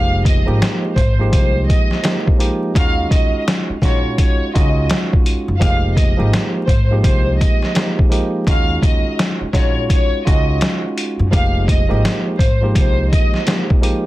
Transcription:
Already playing: upright bass F1, tine electric piano F3 G#3 A#3 D#4 G4, violin section F5
0.25 violin section D#5, kick, closed hi-hat
0.45 upright bass G#1, tine electric piano F3 G#3 A#3 D#4 G4
0.62 snare, closed hi-hat
0.94 upright bass G#1, violin section C5, kick, closed hi-hat
1.19 tine electric piano F3 G#3 A#3 D#4 G4
1.32 upright bass C2, violin section C5, kick, closed hi-hat
1.67 violin section D#5, kick, closed hi-hat
1.91 snare
2.02 tine electric piano F3 G#3 A#3 D#4 G4, snare, closed hi-hat
2.27 kick
2.38 tine electric piano F3 G#3 A#3 D#4 G4, closed hi-hat
2.75 upright bass D#2, tine electric piano G#3 C#4 D#4 F4 F#4, violin section F5, kick, closed hi-hat
3.11 upright bass D#2, violin section D#5, kick, closed hi-hat
3.48 snare, closed hi-hat
3.70 muted upright bass stroke
3.82 upright bass A#1, tine electric piano G#3 C#4 D#4 F4 F#4, violin section C#5, kick, snare, closed hi-hat
4.18 violin section C#5, kick, closed hi-hat
4.54 upright bass C#2, tine electric piano G#3 C#4 D#4 F4 F#4, violin section D#5, kick, closed hi-hat
4.89 snare, closed hi-hat
5.13 kick
5.26 closed hi-hat
5.48 upright bass F#2
5.59 upright bass F1, tine electric piano F3 G#3 A#3 D#4 G4, violin section F5, kick, closed hi-hat
5.96 violin section D#5, kick, closed hi-hat
6.17 upright bass G#1, tine electric piano F3 G#3 A#3 D#4 G4
6.33 snare, closed hi-hat
6.66 upright bass G#1, violin section C5, kick, closed hi-hat
6.90 tine electric piano F3 G#3 A#3 D#4 G4
7.03 upright bass C2, violin section C5, kick, closed hi-hat
7.39 violin section D#5, kick, closed hi-hat
7.62 snare
7.74 tine electric piano F3 G#3 A#3 D#4 G4, snare, closed hi-hat
7.99 kick
8.09 tine electric piano F3 G#3 A#3 D#4 G4, closed hi-hat
8.47 upright bass D#2, tine electric piano G#3 C#4 D#4 F4 F#4, violin section F5, kick, closed hi-hat
8.82 upright bass D#2, violin section D#5, kick, closed hi-hat
9.19 snare, closed hi-hat
9.41 muted upright bass stroke
9.53 upright bass A#1, tine electric piano G#3 C#4 D#4 F4 F#4, violin section C#5, kick, snare, closed hi-hat
9.90 violin section C#5, kick, closed hi-hat
10.25 upright bass C#2, tine electric piano G#3 C#4 D#4 F4 F#4, violin section D#5, kick, closed hi-hat
10.61 snare, closed hi-hat
10.98 closed hi-hat
11.19 upright bass F#2
11.31 upright bass F1, tine electric piano F3 G#3 A#3 D#4 G4, violin section F5, kick, closed hi-hat
11.68 violin section D#5, kick, closed hi-hat
11.88 upright bass G#1, tine electric piano F3 G#3 A#3 D#4 G4
12.05 snare, closed hi-hat
12.37 upright bass G#1, violin section C5, kick, closed hi-hat
12.62 tine electric piano F3 G#3 A#3 D#4 G4
12.75 upright bass C2, violin section C5, kick, closed hi-hat
13.10 violin section D#5, kick, closed hi-hat
13.34 snare
13.45 tine electric piano F3 G#3 A#3 D#4 G4, snare, closed hi-hat
13.70 kick
13.81 tine electric piano F3 G#3 A#3 D#4 G4, closed hi-hat

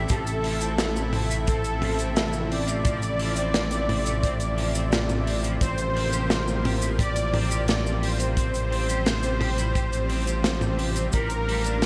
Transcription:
Already playing: analog synth pad C3 A3 E4
0.09 analog synth bass A1, analog synth pad F3, overdriven electric guitar F3, supersaw synth A4, kick, closed hi-hat, cabasa
0.27 closed hi-hat, cabasa
0.44 overdriven electric guitar F3, open hi-hat
0.61 overdriven electric guitar C4, closed hi-hat, cabasa
0.78 overdriven electric guitar F3, snare, closed hi-hat, cabasa
0.96 cabasa
1.13 overdriven electric guitar C4, mid tom, open hi-hat
1.31 overdriven electric guitar A3, closed hi-hat, cabasa
1.47 overdriven electric guitar C4, supersaw synth A4, kick, closed hi-hat, cabasa
1.64 closed hi-hat, cabasa
1.82 overdriven electric guitar F3, mid tom, open hi-hat
1.99 overdriven electric guitar C4, closed hi-hat, cabasa
2.16 overdriven electric guitar F3, snare, closed hi-hat, cabasa
2.33 cabasa
2.51 overdriven electric guitar C4, supersaw synth D5, open hi-hat
2.68 overdriven electric guitar F3, closed hi-hat, cabasa
2.85 overdriven electric guitar F3, kick, closed hi-hat, cabasa
3.02 closed hi-hat, cabasa
3.19 overdriven electric guitar F3, open hi-hat
3.36 overdriven electric guitar C4, closed hi-hat, cabasa
3.54 overdriven electric guitar F3, snare, closed hi-hat, cabasa
3.71 closed hi-hat, cabasa
3.89 overdriven electric guitar C4, mid tom, open hi-hat
4.06 overdriven electric guitar A3, closed hi-hat, cabasa
4.23 overdriven electric guitar C4, kick, closed hi-hat, cabasa
4.40 closed hi-hat, cabasa
4.58 overdriven electric guitar F3, open hi-hat
4.75 overdriven electric guitar C4, closed hi-hat, cabasa
4.92 overdriven electric guitar F3, snare, closed hi-hat, cabasa
5.09 mid tom, cabasa
5.27 overdriven electric guitar C4, open hi-hat
5.44 overdriven electric guitar F3, closed hi-hat, cabasa
5.61 analog synth bass A1, analog synth pad G3 A#3, overdriven electric guitar C4, supersaw synth C5, kick, closed hi-hat, cabasa
5.78 closed hi-hat, cabasa
5.96 overdriven electric guitar C4, open hi-hat
6.13 overdriven electric guitar G4, closed hi-hat, cabasa
6.30 overdriven electric guitar C4, snare, closed hi-hat, cabasa
6.48 cabasa
6.65 overdriven electric guitar G4, mid tom, open hi-hat
6.82 overdriven electric guitar E4, closed hi-hat, cabasa
6.99 overdriven electric guitar G4, supersaw synth D5, kick, closed hi-hat, cabasa
7.16 closed hi-hat, cabasa
7.34 overdriven electric guitar C4, mid tom, open hi-hat
7.51 overdriven electric guitar G4, closed hi-hat, cabasa
7.68 overdriven electric guitar C4, snare, closed hi-hat, cabasa
7.86 cabasa
8.02 overdriven electric guitar G4, supersaw synth C5, open hi-hat
8.20 overdriven electric guitar C4, closed hi-hat, cabasa
8.37 analog synth pad C4, overdriven electric guitar C4, kick, closed hi-hat, cabasa
8.54 closed hi-hat, cabasa
8.72 overdriven electric guitar C4, open hi-hat
8.89 overdriven electric guitar G4, closed hi-hat, cabasa
9.06 overdriven electric guitar C4, snare, closed hi-hat, cabasa
9.23 closed hi-hat, cabasa
9.41 overdriven electric guitar G4, mid tom, open hi-hat
9.58 overdriven electric guitar E4, closed hi-hat, cabasa
9.75 overdriven electric guitar G4, kick, closed hi-hat, cabasa
9.93 closed hi-hat, cabasa
10.10 overdriven electric guitar C4, open hi-hat
10.27 overdriven electric guitar G4, closed hi-hat, cabasa
10.44 overdriven electric guitar C4, snare, closed hi-hat, cabasa
10.61 mid tom, cabasa
10.79 overdriven electric guitar G4, open hi-hat
10.96 overdriven electric guitar C4, closed hi-hat, cabasa
11.13 analog synth bass A1, analog synth pad D3 A#3 F4, overdriven electric guitar G3, supersaw synth A#4, kick, closed hi-hat, cabasa
11.30 closed hi-hat, cabasa
11.48 overdriven electric guitar G3, open hi-hat
11.64 overdriven electric guitar D4, closed hi-hat, cabasa
11.82 overdriven electric guitar G3, snare, closed hi-hat, cabasa

